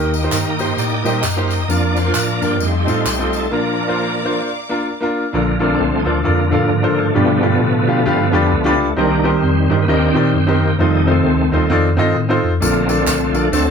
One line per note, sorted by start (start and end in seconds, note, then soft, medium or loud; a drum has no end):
0.00 0.25 D#2 loud
0.00 0.56 D#3 medium
0.00 0.11 A#3 medium
0.00 1.04 A#3 soft
0.00 0.11 D#4 medium
0.00 1.04 D#4 medium
0.00 0.12 G4 medium
0.00 1.65 G4 medium
0.00 0.12 A#4 medium
0.00 1.67 D#5 medium
0.00 1.67 G5 medium
0.00 2.58 A#5 medium
0.00 1.67 D#6 medium
0.14 tambourine medium
0.22 0.43 A#3 medium
0.22 0.44 D#4 medium
0.22 0.44 G4 medium
0.22 0.44 C5 medium
0.32 0.71 G2 medium
0.32 0.60 A#4 medium
0.32 clap medium
0.32 tambourine medium
0.59 0.84 A#3 medium
0.59 0.84 D#4 medium
0.59 0.84 G4 medium
0.59 0.79 C5 loud
0.59 0.85 C5 medium
0.59 tambourine soft
0.77 1.01 A2 medium
0.77 1.04 D5 loud
0.77 tambourine medium
1.04 1.21 A#2 medium
1.04 1.22 G3 soft
1.04 1.21 A#3 medium
1.04 1.22 A#3 soft
1.04 1.22 D#4 medium
1.04 1.22 G4 medium
1.04 1.22 C5 medium
1.04 1.25 D#5 loud
1.04 tambourine medium
1.23 1.62 F#2 medium
1.23 1.52 F5 loud
1.23 clap medium
1.23 tambourine medium
1.36 1.58 A#3 medium
1.36 1.58 D#4 medium
1.36 1.59 G4 medium
1.36 1.59 C5 medium
1.51 1.70 D#5 loud
1.51 tambourine medium
1.68 2.08 F2 loud
1.68 2.57 F3 medium
1.68 1.94 A#3 medium
1.68 2.57 A#3 soft
1.68 1.94 D4 medium
1.68 2.57 D4 medium
1.68 1.94 F4 medium
1.68 1.95 A#4 medium
1.68 2.60 D5 medium
1.68 1.98 D5 loud
1.68 2.59 F5 medium
1.68 2.59 D6 medium
1.68 tambourine medium
1.96 2.16 C5 loud
1.96 tambourine medium
2.05 2.26 A#3 medium
2.05 2.26 D4 medium
2.05 2.26 F4 medium
2.05 2.27 A#4 medium
2.14 2.38 A2 medium
2.14 2.43 A#4 medium
2.14 clap medium
2.14 tambourine medium
2.41 2.57 G2 medium
2.41 2.60 A#3 medium
2.41 2.60 D4 medium
2.41 2.61 F4 medium
2.41 2.90 G4 loud
2.41 2.61 A#4 medium
2.41 tambourine soft
2.60 2.83 F2 loud
2.60 3.48 G3 medium
2.60 3.48 A3 soft
2.60 3.48 D#4 medium
2.60 3.51 D#5 medium
2.60 3.51 F5 medium
2.60 3.51 A5 medium
2.60 3.51 C6 medium
2.60 tambourine medium
2.87 3.03 A2 medium
2.87 3.04 C4 medium
2.87 3.05 D#4 medium
2.87 3.05 F4 medium
2.87 3.06 F4 medium
2.87 3.05 A4 medium
2.87 tambourine medium
3.05 3.44 B1 medium
3.05 3.35 G4 medium
3.05 clap medium
3.05 tambourine medium
3.19 3.40 C4 medium
3.19 3.41 D#4 medium
3.19 3.41 F4 medium
3.19 3.41 A4 medium
3.33 3.53 A4 medium
3.33 tambourine medium
3.51 4.20 A#2 medium
3.51 4.23 F3 medium
3.51 3.76 A#3 medium
3.51 4.24 A#3 soft
3.51 3.76 D4 medium
3.51 4.24 D4 medium
3.51 3.77 F4 medium
3.51 3.77 A#4 medium
3.51 3.79 A#4 medium
3.51 5.32 D5 medium
3.51 5.32 F5 medium
3.51 5.32 A#5 medium
3.51 5.32 D6 medium
3.80 4.40 A#4 loud
3.87 4.08 A#3 medium
3.87 4.08 D4 medium
3.87 4.09 F4 medium
3.87 4.09 C5 medium
4.24 4.41 F3 soft
4.24 4.48 A#3 medium
4.24 4.41 A#3 soft
4.24 4.49 D4 medium
4.24 4.42 D4 medium
4.24 4.49 F4 medium
4.24 4.49 C5 medium
4.69 4.86 A#3 medium
4.69 4.87 D4 medium
4.69 4.87 F4 medium
4.69 4.87 A#4 loud
5.01 5.22 A#3 medium
5.01 5.23 D4 medium
5.01 5.23 F4 medium
5.01 5.24 A#4 loud
5.33 5.72 A#1 loud
5.33 6.02 A#2 medium
5.33 5.59 D3 medium
5.33 6.21 F3 medium
5.33 5.76 A#3 loud
5.33 5.50 D4 medium
5.33 5.50 F4 medium
5.33 5.50 A4 medium
5.33 5.50 A#4 medium
5.33 5.51 D5 medium
5.59 6.21 D3 medium
5.59 6.18 A3 medium
5.59 5.78 C4 medium
5.59 5.84 D4 medium
5.59 5.85 F4 medium
5.59 5.85 A4 medium
5.59 5.85 A#4 medium
5.59 5.86 D5 medium
5.74 5.79 D4 medium
5.79 6.02 C2 loud
5.79 6.00 C4 loud
5.99 6.06 D#4 medium
6.05 6.22 D2 medium
6.05 6.17 D4 medium
6.05 6.20 D4 loud
6.05 6.17 F4 medium
6.05 6.17 A4 medium
6.05 6.17 A#4 medium
6.05 6.18 C5 medium
6.19 6.25 A3 medium
6.24 6.52 F2 medium
6.24 7.12 D3 medium
6.24 7.12 F3 medium
6.24 7.00 A#3 loud
6.24 6.41 D4 medium
6.24 6.41 F4 medium
6.24 6.41 A4 medium
6.24 6.41 A#4 medium
6.24 6.41 D5 medium
6.51 6.67 A2 loud
6.51 6.68 D4 medium
6.51 6.68 F4 medium
6.51 6.69 A4 medium
6.51 6.69 A#4 medium
6.51 6.69 F5 medium
6.70 7.09 G#2 loud
6.82 7.04 D4 medium
6.82 7.04 F4 medium
6.82 7.04 A4 medium
6.82 7.05 A#4 medium
6.82 7.05 C5 medium
6.98 7.14 A3 loud
7.14 7.84 G2 medium
7.14 7.54 G2 loud
7.14 8.03 B2 medium
7.14 7.42 D3 medium
7.14 7.41 F3 medium
7.14 7.44 G3 loud
7.14 8.94 A3 medium
7.14 7.42 B3 medium
7.14 7.31 D4 medium
7.14 7.32 F4 medium
7.14 7.32 G4 medium
7.14 7.32 B4 medium
7.14 7.32 D5 medium
7.41 8.75 D3 medium
7.41 8.75 F3 medium
7.41 8.75 B3 loud
7.41 7.66 D4 medium
7.41 7.67 F4 medium
7.41 7.67 G4 medium
7.41 7.67 B4 medium
7.41 7.67 D5 medium
7.61 7.84 A2 medium
7.87 8.03 B2 medium
7.87 7.99 D4 medium
7.87 7.99 F4 medium
7.87 7.99 G4 medium
7.87 8.00 B4 medium
7.87 8.00 F5 medium
8.05 8.29 G2 medium
8.05 8.22 D4 medium
8.05 8.23 F4 medium
8.05 8.23 G4 medium
8.05 8.23 B4 medium
8.05 8.23 F5 loud
8.32 8.49 F2 medium
8.32 8.50 D4 medium
8.32 8.50 F4 medium
8.32 8.50 G4 medium
8.32 8.50 B4 medium
8.32 8.51 D5 loud
8.52 8.91 C#2 loud
8.64 8.86 D4 loud
8.64 8.86 F4 medium
8.64 8.87 G4 medium
8.64 8.87 B4 medium
8.64 8.87 D5 loud
8.97 9.36 C2 loud
8.97 9.66 C3 medium
8.97 9.85 D#3 medium
8.97 9.85 G3 medium
8.97 9.30 A#3 loud
8.97 9.13 C4 medium
8.97 9.31 D4 medium
8.97 9.13 D#4 medium
8.97 9.14 G4 medium
8.97 9.14 A#4 medium
8.97 9.14 C5 medium
9.24 9.48 C4 medium
9.24 9.49 D#4 medium
9.24 9.49 G4 medium
9.24 9.49 A#4 medium
9.24 9.49 C5 medium
9.43 9.66 F2 medium
9.43 9.71 C4 loud
9.70 9.86 G2 loud
9.70 9.81 C4 medium
9.70 9.76 D4 loud
9.70 9.81 D#4 medium
9.70 9.81 G4 medium
9.70 9.82 A#4 medium
9.70 9.82 C5 medium
9.82 9.88 B3 medium
9.88 10.11 D#2 medium
9.88 10.76 D#3 medium
9.88 10.13 A#3 medium
9.88 10.05 C4 medium
9.88 10.33 C4 loud
9.88 10.13 D4 medium
9.88 10.05 D#4 medium
9.88 10.05 G4 medium
9.88 10.76 G4 medium
9.88 10.05 A#4 medium
9.88 10.06 D#5 medium
10.14 10.31 A#2 medium
10.14 10.32 C4 medium
10.14 10.32 D#4 medium
10.14 10.32 G4 medium
10.14 10.33 A#4 medium
10.14 10.33 D5 medium
10.33 10.72 F#2 loud
10.33 10.59 C4 loud
10.47 10.68 C4 medium
10.47 10.68 D#4 medium
10.47 10.69 G4 medium
10.47 10.69 A#4 medium
10.47 10.69 C5 medium
10.61 10.80 A#3 medium
10.79 11.18 F2 loud
10.79 11.67 C3 medium
10.79 11.06 D#3 medium
10.79 11.12 G3 medium
10.79 11.06 A3 loud
10.79 10.95 C4 medium
10.79 10.96 D#4 medium
10.79 11.13 D#4 medium
10.79 10.96 F4 medium
10.79 10.96 A4 medium
10.79 10.96 C5 medium
11.06 12.39 D#3 medium
11.06 11.51 A3 medium
11.06 11.31 C4 medium
11.06 12.39 C4 loud
11.06 11.31 D#4 medium
11.06 11.31 F4 medium
11.06 11.31 A4 medium
11.06 11.31 C5 medium
11.25 11.48 D2 loud
11.52 11.67 D#2 loud
11.52 11.69 G3 medium
11.52 11.69 A3 soft
11.52 11.63 C4 medium
11.52 11.63 D#4 medium
11.52 11.69 D#4 medium
11.52 11.64 F4 medium
11.52 11.64 A4 medium
11.52 11.64 C5 medium
11.70 11.93 F2 loud
11.70 11.86 C4 medium
11.70 11.87 D#4 medium
11.70 11.87 F4 medium
11.70 11.87 A4 medium
11.70 11.88 D5 loud
11.97 12.13 G2 medium
11.97 12.14 C4 medium
11.97 12.14 D#4 medium
11.97 12.15 F4 medium
11.97 12.15 A4 medium
11.97 12.15 D#5 loud
12.16 12.39 A2 loud
12.29 12.50 C4 medium
12.29 12.51 D#4 medium
12.29 12.51 F4 medium
12.29 12.51 A4 medium
12.29 12.51 C5 loud
12.43 12.59 F2 medium
12.60 13.00 A#1 loud
12.60 13.30 A#2 medium
12.60 13.49 D3 medium
12.60 12.88 F3 medium
12.60 12.88 A3 medium
12.60 12.87 A#3 medium
12.60 12.88 C4 medium
12.60 12.77 D4 medium
12.60 12.78 F4 medium
12.60 12.78 A4 medium
12.60 12.78 A#4 medium
12.60 12.78 D5 medium
12.60 tambourine medium
12.88 13.49 F3 medium
12.88 13.49 A3 medium
12.88 13.36 C4 loud
12.88 13.13 D4 medium
12.88 13.13 F4 medium
12.88 13.13 A4 medium
12.88 13.13 A#4 medium
12.88 13.13 D5 medium
12.88 tambourine medium
13.07 13.30 C2 medium
13.07 clap loud
13.07 tambourine medium
13.34 13.50 A#1 loud
13.34 13.45 D4 medium
13.34 13.52 D4 medium
13.34 13.45 F4 medium
13.34 13.45 A4 medium
13.34 13.46 A#4 medium
13.34 13.46 D5 medium
13.34 tambourine medium
13.52 13.71 D2 loud
13.52 13.71 D3 medium
13.52 13.71 F#3 medium
13.52 13.71 A3 medium
13.52 13.71 C4 loud
13.52 13.69 D4 medium
13.52 13.69 F#4 medium
13.52 13.71 A4 medium
13.52 13.69 A4 medium
13.52 13.70 C5 medium
13.52 13.70 D5 medium
13.52 tambourine medium